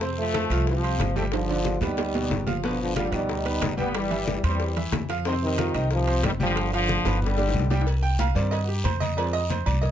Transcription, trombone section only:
0.19 F3 A3
0.69 C3 F3
1.18 F3 A3
1.35 D3 F3
1.84 G3 D#4
2.65 D3 F3
2.81 D3 F3
2.97 D3 G3
3.13 G3 D#4
3.78 G3 B3
3.95 E3 G3
4.45 E3 G3
5.27 C3 D#3
5.43 C3 D#3
5.92 C3 F3
6.25 D#3 G3
6.41 D3 F3
6.74 D3 F3
7.23 D3 G3

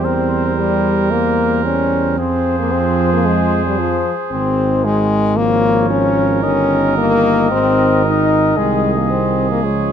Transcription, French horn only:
0.04 C4
0.57 G3
1.11 A#3
1.65 C#4
2.18 C4
2.59 A#3
2.72 C4
3.13 A#3
3.26 G#3
3.66 G3
3.79 F3
4.31 C4
4.84 G#3
5.37 A#3
5.90 C#4
6.43 C#4
6.98 A#3
7.51 C4
8.05 D#4
8.57 G#3
8.98 A#3
9.10 C4
9.51 A#3
9.63 G#3

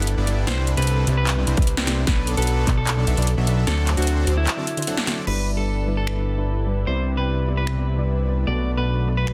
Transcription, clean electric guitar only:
Already playing: A4
0.47 C5
0.77 B4
1.17 B4
2.07 B4
2.37 A4
2.77 A4
3.67 A4
3.97 F#4
4.37 E4
5.27 B4
5.57 A4
5.97 A4
6.87 C5
7.17 B4
7.57 B4
8.47 D5
8.77 B4
9.17 B4

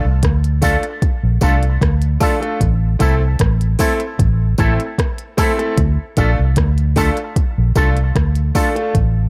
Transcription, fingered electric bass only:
0.05 C2
0.23 D2
1.23 A#1
1.42 C2
1.82 D2
2.61 A1
3.01 C2
3.40 A1
4.20 A1
4.59 A1
5.78 D2
6.18 A#1
6.39 C2
6.57 D2
7.58 A#1
7.76 C2
8.16 D2
8.95 A1

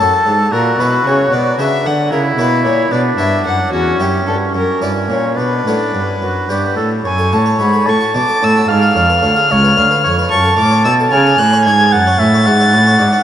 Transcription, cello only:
0.26 G#2
0.53 A#2
0.80 B2
1.05 C#3
1.32 B2
1.58 C#3
1.84 D3
2.11 C#3
2.38 B2
2.65 A#2
2.92 B2
3.18 G2
3.45 F#2
3.72 E2
3.98 F#2
4.26 G2
4.53 F#2
4.81 G2
5.09 A#2
5.36 B2
5.65 A2
5.92 G2
6.21 F#2
6.49 G2
6.79 A2
7.06 F#2
7.33 A2
7.60 G#2
7.88 A2
8.15 B2
8.43 A2
8.70 G#2
8.97 F2
9.24 D2
9.51 C#2
9.78 D2
10.05 F2
10.32 F#2
10.59 A2
10.86 B2
11.13 C#3
11.40 A2
11.66 G#2
11.93 F#2
12.20 A2
12.47 G#2
12.74 A2
13.00 G#2

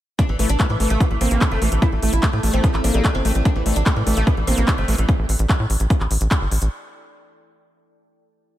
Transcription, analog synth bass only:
0.29 A1
0.39 A1
0.49 A1
0.70 A2
0.80 A1
0.90 A1
1.11 A1
1.21 A1
1.31 A1
1.51 G1
1.62 A1
1.72 A1
1.92 A1
2.02 A1
2.13 A1
2.33 A2
2.43 A1
2.54 A1
2.74 A1
2.84 A1
2.94 A1
3.15 G1
3.25 A1
3.35 A1
3.56 A1
3.66 A1
3.76 A1
3.96 A2
4.07 A1
4.17 A1
4.37 A1
4.47 A1
4.58 A1
4.78 G1
4.88 A1
4.98 A1
5.19 A1
5.29 A1
5.39 A1
5.60 A2
5.70 A1
5.80 A1
6.00 A1
6.11 A1
6.21 A1
6.41 G1
6.51 A1
6.62 A1

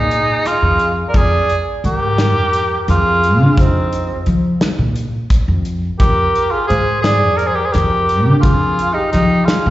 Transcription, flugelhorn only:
Already playing: G#4
0.46 G#4
1.09 D5
1.16 D5
1.86 A#4
2.90 G#4
3.59 D#4
6.00 A#4
6.53 G#4
6.69 C5
7.04 D5
7.39 D5
7.47 C5
7.55 A#4
7.65 C5
7.72 A#4
8.37 A#4
8.42 G#4
8.95 G4
9.12 G4
9.46 G#4

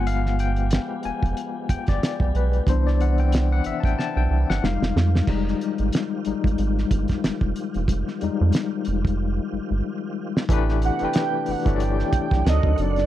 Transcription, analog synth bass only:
Already playing: G1
1.05 F1
1.23 F1
1.70 G1
1.89 G1
2.21 B1
2.35 B1
2.68 C2
3.66 A1
3.84 A1
4.17 B1
4.30 C2
4.50 G1
4.63 F1
4.82 F1
4.96 F2
5.28 F1
5.79 G#1
6.26 G#1
6.45 G#1
6.59 G#1
6.92 G1
7.25 F1
7.42 F1
7.76 E1
7.89 F1
8.22 F2
8.41 F2
8.88 F1
9.53 G1
9.71 G1
10.49 A1
11.02 G1
11.48 G1
11.67 G1
12.13 B1
12.32 B1
12.46 D2
12.64 D2
12.79 F#1

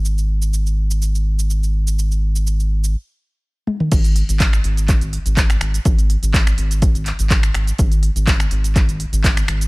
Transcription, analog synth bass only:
Already playing: G#1
3.92 G#1
4.29 G#1
4.64 G#1
5.02 G#1
5.26 G#1
5.61 G#1
5.86 G#1
6.22 G#1
6.58 G#1
6.95 G#1
7.19 G#1
7.55 G#1
7.79 G#1
8.16 G#1
8.51 G#1
8.89 G#1
9.12 G#1
9.49 G#1

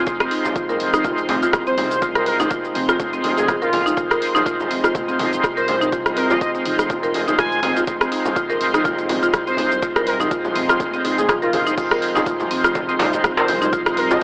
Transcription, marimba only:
0.20 C4
0.31 D#4
0.56 F4
0.69 A#4
0.94 D#4
1.05 F4
1.29 C4
1.43 F4
1.67 C4
1.78 D#4
2.02 F4
2.16 A#4
2.40 D#4
2.51 F4
2.75 C4
2.89 F4
3.13 C4
3.24 D#4
3.48 F4
3.62 A#4
3.86 D#4
3.97 F4
4.11 A#4
4.35 D#4
4.46 F4
4.70 C4
4.84 F4
5.08 C4
5.19 D#4
5.44 F4
5.57 A#4
5.81 D#4
5.92 F4
6.17 C4
6.30 F4
6.55 C4
6.66 D#4
6.90 F4
7.03 A#4
7.28 D#4
7.39 F4
7.63 C4
7.77 F4
8.01 C4
8.12 D#4
8.36 F4
8.50 A#4
8.74 D#4
8.85 F4
9.10 C4
9.23 F4
9.47 C4
9.58 D#4
9.83 F4
9.96 A#4
10.20 D#4
10.31 F4
10.56 C4
10.69 F4
10.94 C4
11.04 D#4
11.29 F4
11.42 A#4
11.67 D#4
11.78 F4
11.91 A#4
12.15 D#4
12.26 F4
12.51 C4
12.64 F4
12.89 C4
13.00 D#4
13.24 F4
13.37 A#4
13.62 D#4
13.73 F4
13.97 C4
14.11 F4

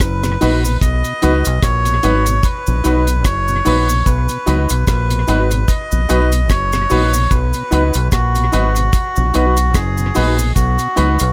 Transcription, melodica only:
0.00 B4
0.81 D#5
1.63 C#5
2.44 B4
3.25 C#5
4.06 B4
4.87 B4
5.68 D#5
6.49 C#5
7.30 B4
8.11 F#4
9.75 G#4
10.55 F#4

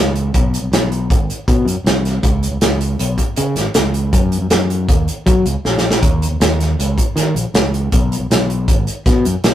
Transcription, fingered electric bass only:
Already playing: C#2
0.35 B1
0.62 B1
0.72 B1
1.10 G#1
1.48 B2
1.65 F#2
1.84 C2
2.23 C#2
2.51 C#2
2.62 C#2
3.00 B1
3.38 C#3
3.55 G#1
3.75 C#2
4.13 F#2
4.41 F#2
4.50 F#2
4.89 D#2
5.26 F#3
5.45 C#2
5.65 A#1
6.03 D#2
6.31 D#2
6.40 D#2
6.79 C#2
7.16 D#3
7.35 A#1
7.54 C#2
7.93 B1
8.20 B1
8.31 B1
8.68 G#1
9.06 B2
9.25 F#2
9.44 B1

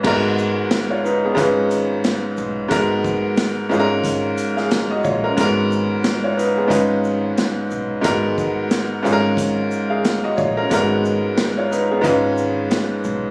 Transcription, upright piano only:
0.03 G#2 G#3 B3 F#4 A#4
0.90 F4 C#5
1.04 D#4 B4
1.25 B3 G#4
1.35 G#2 G#3 C#4 D#4 F4 B4
2.68 G#2 G#3 B3 F#4 A#4
3.69 G#2 G#3 C#4 F4 G#4
3.79 A#4
4.57 G#4 F5
4.91 F#4 D#5
5.04 F4 C#5
5.24 C#4 A#4
5.37 G#2 G#3 B3 F#4 A#4
6.24 F4 C#5
6.37 D#4 B4
6.58 B3 G#4
6.68 G#2 G#3 C#4 D#4 F4 B4
8.01 G#2 G#3 B3 F#4 A#4
9.03 G#2 G#3 C#4 F4 G#4
9.13 A#4
9.90 G#4 F5
10.24 F#4 D#5
10.37 F4 C#5
10.57 C#4 A#4
10.70 G#2 G#3 B3 F#4 A#4
11.57 F4 C#5
11.71 D#4 B4
11.91 B3 G#4
12.01 G#2 G#3 C#4 D#4 F4 B4

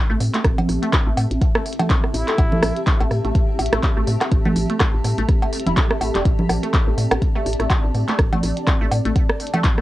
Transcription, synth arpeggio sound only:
0.10 A3
0.34 A3
0.83 A3
1.07 A3
1.55 A3
1.79 A3
2.28 A3
2.52 A3
3.00 A3
3.24 A3
3.73 A3
3.97 A3
4.45 A3
4.70 A3
5.18 A3
5.42 A3
5.67 E4
5.77 A3
5.91 A3
6.01 A3
6.15 G3
6.63 A3
6.88 A3
7.36 A3
7.60 A3
8.08 A3
8.33 A3
8.81 A3
9.05 A3
9.54 A3
9.78 A3

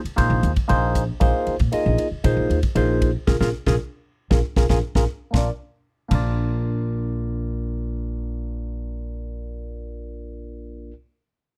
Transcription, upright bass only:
0.04 muted upright bass stroke
0.18 A#2
0.30 A#1
0.43 D#2
0.56 muted upright bass stroke
0.70 A#1
1.21 A#1
1.47 muted upright bass stroke
1.60 A#2
1.73 muted upright bass stroke
1.86 A#1
2.11 muted upright bass stroke
2.24 A#2
2.37 A#1
2.50 D#2
2.64 muted upright bass stroke
2.75 A#1
3.28 A#1
3.41 A#1
3.67 A#1
4.31 A#1
4.57 A#1
4.70 A#1
4.95 A#1
5.34 A#1
6.11 A#1

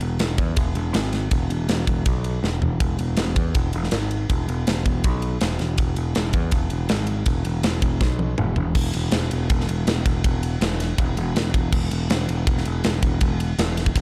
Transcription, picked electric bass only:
0.01 E1
0.20 E1
0.38 E2
0.57 E1
0.75 E1
0.95 G#1
1.31 E1
1.50 E1
1.68 E1
1.87 E1
2.06 B1
2.43 E1
2.61 E1
2.80 E1
2.99 E1
3.18 E1
3.36 E2
3.55 E1
3.74 E1
3.92 G#1
4.29 E1
4.48 E1
4.67 E1
4.86 E1
5.04 B1
5.42 E1
5.60 E1
5.78 E1
5.97 E1
6.16 E1
6.33 E2
6.52 E1
6.71 E1
6.90 G#1
7.26 E1
7.45 E1
7.63 E1
7.82 E1
8.01 B1
8.38 E1
8.57 E1
8.75 E1
8.95 E1
9.13 E1
9.31 E1
9.50 E1
9.69 E1
9.87 E1
10.05 E1
10.25 E1
10.61 E1
10.98 E1
11.17 E1
11.35 E1
11.54 E1
11.72 E1
11.91 E1
12.10 E1
12.29 E1
12.47 E1
12.66 E1
12.85 E1
13.03 E1
13.21 E1
13.58 E1
13.96 E1

